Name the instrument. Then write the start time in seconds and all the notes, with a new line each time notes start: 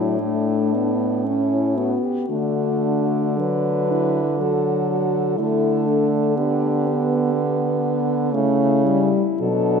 french horn
Already playing: A2 F#3 D4 E4
0.20 A3 D4
0.74 B3
1.26 C#4
1.50 E4
1.76 B3 F#4
2.03 G4
2.29 D3 A3 D4 F#4
3.39 F#3 D4 B4
3.91 E4
4.39 F#3 F#4 A4
4.91 F#4
5.38 D3 A3 E4 A4
5.87 D4
6.36 B3 D4 G4
6.86 B3
7.35 B3
8.33 C#3 A3 C#4 E4
8.86 G3
9.41 B2 F#3 D4 A4